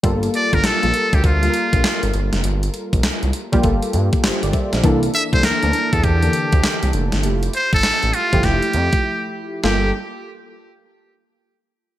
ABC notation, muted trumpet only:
X:1
M:4/4
L:1/16
Q:"Swing 16ths" 1/4=100
K:Gdor
V:1 name="Muted trumpet"
z2 d B A3 G F6 z2 | z16 | z2 e c B3 A G6 z2 | z2 c A3 F2 G6 z2 |
G2 z12 z2 |]